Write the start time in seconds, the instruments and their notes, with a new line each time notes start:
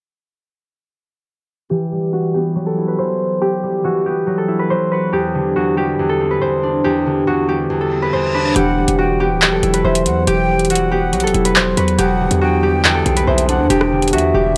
1.70 harp E3 G4
1.92 harp G3
2.13 harp F#4
2.34 harp B3 G4
2.55 harp F#3
2.66 harp A4
2.78 harp E4
2.88 harp B4
2.99 harp E3 C5
3.42 harp G4
3.63 harp G3
3.84 harp E3 F#4
4.06 harp B3 G4
4.27 harp F#3
4.38 harp A4
4.48 harp E4
4.59 harp B4
4.70 harp F#3 C5
4.92 harp F#4 B4
5.12 harp E2 G4
5.35 harp D3
5.56 harp E2 F#4
5.77 harp G3 G4
5.99 harp E2
6.09 harp A4
6.20 harp C4
6.31 harp B4
6.41 harp E2 C5
6.63 harp D4
6.84 harp E2 G4
7.06 harp D3
7.27 harp E2 F#4
7.49 harp G3 G4
7.70 harp E2, reverse cymbal
7.81 harp A4
7.92 harp C4
8.02 harp B4
8.13 harp E2 C5
8.34 harp D4 B4
8.56 808-style bass E1, harp E3 G4, flute F#5, closed hi-hat
8.78 harp G3
8.88 808-style bass E1, closed hi-hat
8.99 harp F#4, flute G5
9.20 harp B3 G4
9.31 808-style bass D1
9.41 harp F#3, clap
9.47 808-style bass E1
9.52 harp A4
9.63 808-style bass E1, harp E4, closed hi-hat
9.74 harp B4, closed hi-hat
9.84 808-style bass E1, harp E3 C5, flute E5
9.95 closed hi-hat
10.06 808-style bass E2, flute F#5, closed hi-hat
10.27 808-style bass E1, harp G4, flute G5, closed hi-hat
10.49 harp G3
10.59 closed hi-hat
10.65 closed hi-hat
10.70 harp E3 F#4, flute F#5, closed hi-hat
10.75 closed hi-hat
10.91 harp B3 G4
11.12 808-style bass B1, harp F#3, closed hi-hat
11.20 808-style bass E1, harp A4, closed hi-hat
11.27 closed hi-hat
11.34 808-style bass E1, harp E4, closed hi-hat
11.45 harp B4, closed hi-hat
11.56 harp F#3 C5, clap
11.77 808-style bass E2, harp F#4 B4, closed hi-hat
11.88 closed hi-hat
11.98 808-style bass E1, harp E2 G4, flute F#5, closed hi-hat
12.20 harp D3
12.31 808-style bass E2, closed hi-hat
12.41 harp E2 F#4, flute G5
12.63 harp G3 G4
12.84 harp E2, clap
12.95 harp A4
13.06 808-style bass B1, harp C4, closed hi-hat
13.17 harp B4, closed hi-hat
13.27 808-style bass B1, harp E2 C5, flute E5
13.38 closed hi-hat
13.49 harp D4, flute F#5, closed hi-hat
13.59 808-style bass E2
13.70 808-style bass E1, harp E2 G4, flute G5, closed hi-hat
13.81 cross-stick
13.92 harp D3
14.02 closed hi-hat
14.08 closed hi-hat
14.13 harp E2 F#4, 808-style bass E2, flute E5, closed hi-hat
14.18 closed hi-hat
14.34 808-style bass E1, harp G3 G4